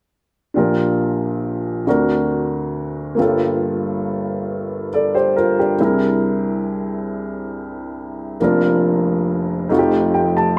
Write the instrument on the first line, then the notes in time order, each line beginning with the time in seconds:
upright piano
0.54 A#1 A#2 D4 F4 G4 A#4
1.86 D2 D3 C4 D4 F#4 A#4
3.15 G1 G2 A#3 F4
3.20 G4 A4
4.94 A4 D5
5.15 G4 C5
5.36 F4 A#4
5.59 D4 G4
5.78 C2 C3 C4 E4 G#4
5.84 A#4
8.40 F1 F2 A#3 D4 F4 A#4
9.69 F1 F2 A3 D#4 F4 F#4
9.79 G4
10.14 G5
10.37 A5